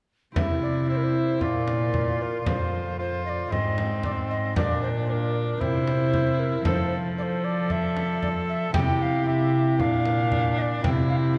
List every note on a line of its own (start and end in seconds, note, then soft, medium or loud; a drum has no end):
0.32 1.42 C3 medium
0.32 0.84 C4 soft
0.32 0.85 E4 soft
0.32 0.85 E4 medium
0.32 0.86 G4 soft
0.36 1.43 C3 soft
0.36 0.61 E5 medium
0.36 frame drum medium
0.62 0.88 D5 medium
0.85 1.42 C4 soft
0.85 1.42 E4 soft
0.85 1.43 G4 soft
0.89 1.43 E4 medium
0.89 0.99 C5 medium
0.97 1.05 A#4 medium
1.04 1.42 C5 medium
1.38 2.46 A#2 medium
1.38 2.49 A#2 soft
1.38 2.41 F4 soft
1.38 2.47 F4 medium
1.38 2.48 A#4 soft
1.38 frame drum soft
1.42 2.24 D5 medium
1.68 frame drum soft
1.94 frame drum medium
2.22 2.47 A#4 medium
2.42 3.54 F2 soft
2.42 3.52 F4 soft
2.42 3.52 A4 soft
2.42 3.49 C5 soft
2.42 frame drum medium
2.47 3.50 F2 medium
2.47 2.98 F4 medium
2.47 2.98 C5 medium
2.99 3.53 F4 medium
2.99 3.25 C5 medium
3.26 3.50 D5 medium
3.26 3.30 D#5 medium
3.47 4.58 G#2 soft
3.47 4.57 D#4 soft
3.47 4.57 G#4 soft
3.47 4.58 C5 soft
3.47 4.03 D#5 medium
3.52 4.59 G#2 medium
3.52 4.56 C4 medium
3.52 frame drum medium
3.78 frame drum soft
4.03 4.11 D5 medium
4.03 frame drum medium
4.30 4.56 D#5 medium
4.53 5.04 D4 soft
4.53 5.06 F4 soft
4.53 5.07 A#4 soft
4.53 4.82 D5 medium
4.53 frame drum medium
4.57 5.63 A#2 soft
4.57 5.60 A#2 medium
4.57 5.08 D4 medium
4.83 4.89 C5 medium
5.05 5.61 D4 soft
5.05 5.62 D4 medium
5.05 5.62 F4 soft
5.05 5.63 A#4 soft
5.05 5.13 C5 medium
5.12 5.62 A#4 medium
5.57 6.63 C3 medium
5.57 6.68 C3 medium
5.57 6.61 C4 medium
5.57 6.66 E4 soft
5.57 6.64 E4 medium
5.57 6.67 G4 soft
5.57 6.41 C5 medium
5.57 frame drum soft
5.88 frame drum soft
6.13 frame drum medium
6.39 6.65 A#4 medium
6.62 8.71 F3 medium
6.62 8.70 C4 soft
6.62 8.76 F4 soft
6.62 6.99 A4 medium
6.62 8.76 A4 soft
6.62 6.94 C5 loud
6.62 frame drum medium
6.66 8.77 F3 medium
7.17 8.70 A4 medium
7.17 7.23 D5 medium
7.22 7.46 C5 medium
7.44 7.73 D5 medium
7.70 8.22 E5 loud
7.70 frame drum soft
7.97 frame drum soft
8.23 8.29 D5 medium
8.23 frame drum soft
8.49 8.73 E5 medium
8.72 9.81 C3 medium
8.72 9.82 C3 medium
8.72 9.23 C4 soft
8.72 9.24 E4 medium
8.72 9.26 G4 medium
8.72 9.25 G4 soft
8.72 9.03 G5 medium
8.72 frame drum medium
9.02 9.25 F5 loud
9.24 9.80 C4 medium
9.24 9.80 E4 medium
9.24 9.81 G4 soft
9.24 9.82 G4 medium
9.24 9.78 E5 medium
9.76 10.84 A#2 medium
9.76 10.86 A#2 medium
9.76 10.84 D4 soft
9.76 10.85 A#4 soft
9.76 10.60 F5 loud
9.76 frame drum soft
9.81 10.87 D4 medium
10.05 frame drum soft
10.32 frame drum soft
10.58 10.83 D5 medium
10.58 10.63 D#5 medium
10.80 11.38 C3 medium
10.80 11.31 C4 soft
10.80 11.32 E4 soft
10.80 11.33 G4 soft
10.80 10.90 G5 medium
10.80 frame drum medium
10.84 11.38 C3 medium
10.84 11.36 E4 medium
11.10 11.16 F5 medium
11.32 11.38 C4 soft
11.32 11.38 E4 soft
11.32 11.38 G4 medium